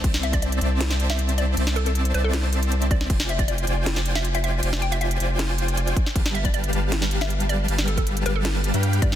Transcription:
<<
  \new Staff \with { instrumentName = "Supersaw synth" } { \time 4/4 \key c \major \tempo 4 = 157 <c' c'' d'' e'' a''>4. <c' c'' d'' e'' a''>2~ <c' c'' d'' e'' a''>8 | <c' c'' d'' e'' a''>4. <c' c'' d'' e'' a''>2~ <c' c'' d'' e'' a''>8 | <f' c'' d'' g'' aes''>4. <f' c'' d'' g'' aes''>2~ <f' c'' d'' g'' aes''>8 | <f' c'' d'' g'' aes''>4. <f' c'' d'' g'' aes''>2 r8 |
<g g' b' f'' a''>4. <g g' b' f'' a''>2~ <g g' b' f'' a''>8 | <g g' b' f'' a''>4. <g g' b' f'' a''>4~ <g g' b' f'' a''>16 <g g' b' f'' g''>8. <g g' b' f'' b''>8 | }
  \new Staff \with { instrumentName = "Synth pluck" } { \time 4/4 \key c \major r8 e''16 d''16 d''16 r4. e''8 r16 d''16 r16 | r8 a'16 a'16 r8 c''16 a'16 r4. d''8 | r8 e''16 d''16 d''16 r4. e''8 e''16 e''16 r16 | r8 g''16 e''16 e''16 r2 r8. |
r8 e''16 d''16 d''16 r4. e''8 r16 d''16 r16 | r8 a'16 a'16 r8 b'16 a'16 r4. d''8 | }
  \new Staff \with { instrumentName = "Sub bass" } { \clef bass \time 4/4 \key c \major c,4. c,2~ c,8 | c,4. c,2~ c,8 | f,,4. f,,2~ f,,8 | f,,4. f,,2 r8 |
g,,4. g,,2~ g,,8 | g,,4. g,,4~ g,,16 g,8. g,8 | }
  \new DrumStaff \with { instrumentName = "Drums" } \drummode { \time 4/4 <cymc hh bd>16 sn16 hh16 <hh bd>16 hh16 hh16 hh8 <cymc hh sn>16 sn16 hh16 <hh sn>16 hh16 hh16 hh8 | <cymc hh>16 sn16 hh16 hh16 hh16 hh16 hh8 <cymc hh sn>8 hh16 hh16 hh16 hh16 <hh bd>16 sn16 | <cymc hh bd>16 sn16 hh16 <hh bd>16 hh16 hh16 hh8 <cymc hh sn>16 sn16 hh16 <hh sn>16 hh16 hh16 hh8 | <cymc hh>16 sn16 hh16 hh16 hh16 hh16 hh8 <cymc hh sn>8 hh16 hh16 hh16 hh16 <hh bd>16 sn16 |
<cymc hh bd>16 sn16 hh16 <hh bd>16 hh16 hh16 hh8 <cymc hh sn>16 sn16 hh16 <hh sn>16 hh16 hh16 hh8 | <cymc hh>16 sn16 hh16 <hh bd>16 hh16 hh16 hh8 <cymc hh sn>8 hh16 hh16 hh16 hh16 <hh bd>16 sn16 | }
>>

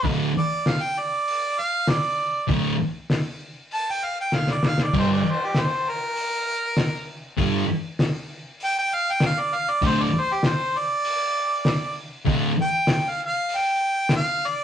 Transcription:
<<
  \new Staff \with { instrumentName = "Harmonica" } { \time 4/4 \key d \minor \tempo 4 = 98 r8 d''8 f''16 g''16 d''4 f''8 d''4 | r2 a''16 g''16 f''16 g''16 f''16 d''16 f''16 d''16 | c''16 d''16 c''16 g'16 c''8 bes'2 r8 | r2 g''16 g''16 f''16 g''16 f''16 d''16 f''16 d''16 |
c''16 d''16 c''16 g'16 c''8 d''2 r8 | r8 g''8 g''16 f''16 f''8 g''4 f''8 d''8 | }
  \new Staff \with { instrumentName = "Distorted electric guitar" } { \clef bass \time 4/4 \key d \minor <d, a, d>8 r2. r8 | <d, a, d>8 r2. r8 | <g, d g>8 r2. r8 | <g, d g>8 r2. r8 |
<d, a, d>8 r2. r8 | <d, a, d>8 r2. r8 | }
  \new DrumStaff \with { instrumentName = "Drums" } \drummode { \time 4/4 <hho bd>4 <hho sn>4 hho4 <hho sn>4 | <hho bd>4 <hho sn>4 hho4 sn16 sn16 sn16 sn16 | <cymc bd>4 <hho sn>4 hho4 <hho sn>4 | <hho bd>4 <hho sn>4 hho4 <hho sn>4 |
<hho bd>4 <hho sn>4 hho4 <hho sn>4 | <hho bd>4 <hho sn>4 hho4 <hho sn>4 | }
>>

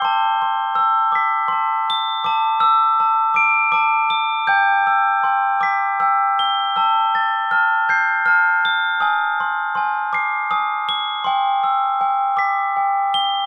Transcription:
\new Staff \with { instrumentName = "Glockenspiel" } { \time 6/8 \key c \major \tempo 4. = 54 << { c'''4 e'''8 d'''8 c'''4 | d'''8 e'''4 d'''8 d'''4 | g'''4 c'''8 d'''8 e'''4 | e'''4 f'''8 g'''8 f'''4 |
ees'''4 c'''8 d'''8 ees'''4 | c'''4. d'''4. | } \\ { a''8 c'''8 a''8 b'''8 a''8 a''''8 | a''8 d'''8 a''8 d''''8 a''8 a''''8 | g''8 e'''8 g''8 b'''8 g''8 g''''8 | a''8 a'''8 a''8 c''''8 a''8 a''''8 |
aes''8 c'''8 aes''8 c''''8 aes''8 aes''''8 | g''8 e'''8 g''8 b'''8 g''8 g''''8 | } >> }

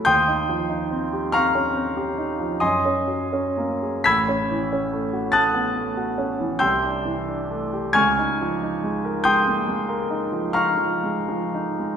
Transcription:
<<
  \new Staff \with { instrumentName = "Grand piano" } { \time 9/8 \key des \lydian \tempo 4. = 46 <g'' c''' ees''' g'''>4. <f'' bes'' des''' f'''>4. <ees'' aes'' c''' ees'''>4. | <b'' e''' aes''' b'''>4. <a'' ees''' fis''' a'''>4. <g'' c''' e''' g'''>4. | <aes'' des''' f''' aes'''>4. <g'' c''' ees''' g'''>4. <f'' bes'' des''' f'''>4. | }
  \new Staff \with { instrumentName = "Grand piano" } { \time 9/8 \key des \lydian ees,16 ees'16 f16 ees'16 c'16 g'16 c'16 des'16 c'16 g'16 ees'16 f16 ges,16 des'16 ges16 des'16 bes16 aes'16 | a,,16 cis'16 e16 cis'16 a16 fis'16 a16 b16 a16 fis'16 cis'16 e16 c,16 d'16 e16 d'16 a16 g'16 | des,16 ees'16 f16 ees'16 aes16 bes'16 aes16 bes16 aes16 bes'16 ees'16 f16 ees'16 f16 aes16 f16 ees'16 aes16 | }
>>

